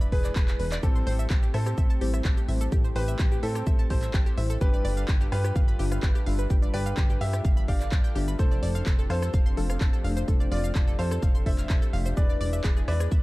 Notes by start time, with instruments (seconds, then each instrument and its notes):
Already playing: analog synth pad G#3 D4 E4
0.01 synth pluck B5, closed hi-hat, shaker
0.12 analog synth bass E1, grand piano G#4 B4, synth bell B4, synth pluck B4, kick, open hi-hat
0.24 synth pluck D5, clap, closed hi-hat, shaker
0.36 analog synth bass E1, synth pluck B4, kick, clap, closed hi-hat, shaker
0.48 synth pluck B4, clap, closed hi-hat, shaker
0.59 analog synth bass E1, synth pluck B4, open hi-hat
0.72 synth pluck D5, clap, closed hi-hat, shaker
0.83 analog synth bass A1, synth stab G3 C4 E4 A4, analog synth pad A3 C4 G4, grand piano C4 A4, synth pluck G4, synth bell A4, kick, closed hi-hat, shaker
0.96 synth pluck C5, shaker
1.07 analog synth bass A1, synth pluck C5, open hi-hat
1.19 synth pluck E5, closed hi-hat, shaker
1.30 analog synth bass A1, synth pluck G4, kick, clap, closed hi-hat, shaker
1.43 synth pluck G4, shaker
1.54 analog synth bass A2, grand piano C4 A4, synth bell A4, synth pluck E5, cross-stick, open hi-hat
1.66 synth pluck G4, cross-stick, closed hi-hat, shaker
1.78 analog synth bass A1, synth pluck E5, kick, closed hi-hat, shaker
1.90 synth pluck A5, closed hi-hat, shaker
2.01 analog synth bass A1, synth stab G3 C4 E4 C5, synth pluck G4, open hi-hat
2.14 synth pluck E5, cross-stick, closed hi-hat, shaker
2.25 analog synth bass A1, synth pluck G4, kick, clap, closed hi-hat, shaker
2.37 synth pluck G4, closed hi-hat, shaker
2.48 analog synth bass A1, synth stab G3 C4 E4 C5, synth pluck E5, open hi-hat
2.61 synth pluck A4, closed hi-hat, shaker
2.72 analog synth bass A1, synth stab G3 C4 E4 A4, synth pluck G4, kick, closed hi-hat, shaker
2.84 synth pluck C5, shaker
2.96 analog synth bass A1, grand piano G4 B4, synth bell B4, synth pluck C5, open hi-hat
3.08 synth pluck E5, closed hi-hat, shaker
3.19 analog synth bass A1, synth pluck G4, kick, clap, closed hi-hat, shaker
3.32 synth pluck G4, shaker
3.43 analog synth bass A2, grand piano C4 A4, synth bell A4, synth pluck E5, open hi-hat
3.55 synth pluck G4, cross-stick, closed hi-hat, shaker
3.67 analog synth bass A1, synth pluck E5, kick, closed hi-hat, shaker
3.79 synth pluck A5, closed hi-hat, shaker
3.90 analog synth bass A1, synth stab G3 C4 E4 C5, synth pluck G4, grand piano A4 C5, synth bell C5, kick, open hi-hat
4.02 synth pluck E5, clap, closed hi-hat, shaker
4.14 analog synth bass A1, synth pluck G4, kick, clap, closed hi-hat, shaker
4.26 synth pluck G4, closed hi-hat, shaker
4.37 analog synth bass A1, synth stab G3 C4 E4 C5, synth pluck E5, open hi-hat
4.50 synth pluck A4, closed hi-hat, shaker
4.61 analog synth bass G1, synth stab G3 D4 F4 B4, analog synth pad G3 D4 F4 A4 B4, synth pluck G4, grand piano G4 B4, synth bell B4, kick, closed hi-hat, shaker
4.74 synth pluck D5, shaker
4.85 analog synth bass G1, synth pluck D5, open hi-hat
4.97 synth pluck F5, closed hi-hat, shaker
5.08 analog synth bass G1, synth pluck G4, kick, clap, closed hi-hat, shaker
5.21 synth pluck G4, shaker
5.32 analog synth bass G2, grand piano G4 B4, synth bell B4, synth pluck F5, cross-stick, open hi-hat
5.44 synth pluck G4, cross-stick, closed hi-hat, shaker
5.56 analog synth bass G1, synth pluck F5, kick, closed hi-hat, shaker
5.68 synth pluck B5, closed hi-hat, shaker
5.79 analog synth bass G1, synth stab G3 D4 F4 E5, synth pluck G4, open hi-hat
5.92 synth pluck F5, cross-stick, closed hi-hat, shaker
6.03 analog synth bass G1, synth pluck G4, kick, clap, closed hi-hat, shaker
6.15 synth pluck G4, closed hi-hat, shaker
6.26 analog synth bass G1, synth stab G3 D4 F4 E5, synth pluck F5, open hi-hat
6.39 synth pluck B4, closed hi-hat, shaker
6.50 analog synth bass G1, synth stab G3 D4 F4 B4, synth pluck G4, kick, closed hi-hat, shaker
6.62 synth pluck D5, shaker
6.74 analog synth bass G1, grand piano G4 B4, synth bell B4, synth pluck D5, open hi-hat
6.86 synth pluck F5, closed hi-hat, shaker
6.97 analog synth bass G1, synth pluck G4, kick, clap, closed hi-hat, shaker
7.10 synth pluck G4, shaker
7.21 analog synth bass G2, grand piano G4 E5, synth bell E5, synth pluck F5, open hi-hat
7.33 synth pluck G4, cross-stick, closed hi-hat, shaker
7.45 analog synth bass G1, synth pluck F5, kick, closed hi-hat, shaker
7.57 synth pluck B5, closed hi-hat, shaker
7.68 analog synth bass G1, synth stab G3 D4 F4 F5, synth pluck G4, grand piano D5 F5, synth bell F5, kick, open hi-hat
7.80 synth pluck D5, clap, closed hi-hat, shaker
7.92 analog synth bass G1, synth pluck D5, kick, clap, closed hi-hat, shaker
8.04 synth pluck G5, closed hi-hat, shaker
8.15 analog synth bass G1, synth stab G3 D4 F4 E5, synth pluck G4, open hi-hat
8.28 synth pluck B4, closed hi-hat, shaker
8.39 analog synth bass F1, analog synth pad F3 C4 G4, synth stab A3 D4 C5, synth pluck A4, grand piano A4 C5, synth bell C5, kick, closed hi-hat, shaker
8.51 synth pluck D5, shaker
8.63 analog synth bass F1, synth pluck D5, open hi-hat
8.75 synth pluck F5, closed hi-hat, shaker
8.86 analog synth bass F1, synth pluck A4, kick, clap, closed hi-hat, shaker
8.99 synth pluck A4, shaker
9.10 analog synth bass F2, grand piano A4 C5, synth bell C5, synth pluck F5, cross-stick, open hi-hat
9.22 synth pluck A4, cross-stick, closed hi-hat, shaker
9.34 analog synth bass F1, synth pluck F5, kick, closed hi-hat, shaker
9.46 synth pluck C6, closed hi-hat, shaker
9.57 analog synth bass F1, synth stab A3 D4 F4 F5, synth pluck A4, open hi-hat
9.70 synth pluck F5, cross-stick, closed hi-hat, shaker
9.81 analog synth bass F1, synth pluck A4, kick, clap, closed hi-hat, shaker
9.93 synth pluck A4, closed hi-hat, shaker
10.04 analog synth bass F1, synth stab A3 D4 F4 F5, synth pluck F5, open hi-hat
10.17 synth pluck C5, closed hi-hat, shaker
10.28 analog synth bass F1, synth stab A3 D4 F4 C5, synth pluck A4, kick, closed hi-hat, shaker
10.40 synth pluck D5, shaker
10.52 analog synth bass F1, grand piano F4 D5, synth pluck D5, synth bell D5, open hi-hat
10.64 synth pluck F5, closed hi-hat, shaker
10.75 analog synth bass F1, synth pluck A4, kick, clap, closed hi-hat, shaker
10.88 synth pluck A4, shaker
10.99 analog synth bass F2, grand piano A4 C5, synth bell C5, synth pluck F5, open hi-hat
11.11 synth pluck A4, cross-stick, closed hi-hat, shaker
11.22 analog synth bass F1, synth pluck F5, kick, closed hi-hat, shaker
11.35 synth pluck C6, closed hi-hat, shaker
11.46 analog synth bass F1, synth stab A3 D4 F4 D5, synth pluck A4, grand piano C5 E5, synth bell E5, kick, open hi-hat
11.58 synth pluck F5, clap, closed hi-hat, shaker
11.70 analog synth bass F1, synth pluck A4, kick, clap, closed hi-hat, shaker
11.82 synth pluck A4, closed hi-hat, shaker
11.93 analog synth bass F1, synth stab A3 D4 F4 F5, synth pluck F5, open hi-hat
12.06 synth pluck C5, closed hi-hat, shaker
12.17 analog synth bass E1, synth stab G#3 D4 E4 B4, analog synth pad G#3 D4 E4, synth pluck G#4, grand piano B4 D5, synth bell D5, kick, closed hi-hat, shaker
12.29 synth pluck D5, shaker
12.41 analog synth bass E1, synth pluck D5, open hi-hat
12.53 synth pluck E5, closed hi-hat, shaker
12.64 analog synth bass E1, synth pluck G#4, kick, clap, closed hi-hat, shaker
12.77 synth pluck G#4, shaker
12.88 analog synth bass E2, grand piano B4 D5, synth bell D5, synth pluck E5, cross-stick, open hi-hat
13.00 synth pluck G#4, cross-stick, closed hi-hat, shaker
13.11 analog synth bass E1, synth pluck E5, kick, closed hi-hat, shaker